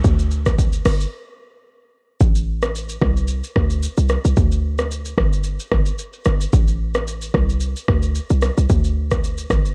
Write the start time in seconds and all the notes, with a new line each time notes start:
0.04 D2, kick, shaker
0.19 shaker
0.31 shaker
0.46 kick, cross-stick, shaker
0.59 kick, shaker
0.73 shaker
0.85 G1, cross-stick, open hi-hat, shaker
1.00 shaker
2.20 A1, kick, shaker
2.35 shaker
2.62 cross-stick, shaker
2.75 shaker
2.89 shaker
3.02 C2, kick, cross-stick
3.17 shaker
3.28 shaker
3.44 shaker
3.56 D2, kick, cross-stick
3.70 shaker
3.83 shaker
3.97 C2, shaker
4.09 cross-stick, shaker
4.25 C2, shaker
4.37 D2, kick, shaker
4.52 shaker
4.78 cross-stick, shaker
4.91 shaker
5.05 shaker
5.18 G1, kick, cross-stick
5.33 shaker
5.44 shaker
5.60 shaker
5.72 G1, kick, cross-stick
5.86 shaker
5.99 shaker
6.13 shaker
6.25 G1, cross-stick, shaker
6.41 shaker
6.53 A1, kick, shaker
6.68 shaker
6.94 cross-stick, shaker
7.08 shaker
7.22 shaker
7.34 C2, kick, cross-stick
7.49 shaker
7.60 shaker
7.76 shaker
7.88 D2, kick, cross-stick
8.03 shaker
8.15 shaker
8.30 C2, shaker
8.42 cross-stick, shaker
8.57 C2, shaker
8.69 D2, kick, shaker
8.84 shaker
9.11 kick, cross-stick, shaker
9.24 shaker
9.38 shaker
9.50 G1, kick, cross-stick, shaker
9.66 shaker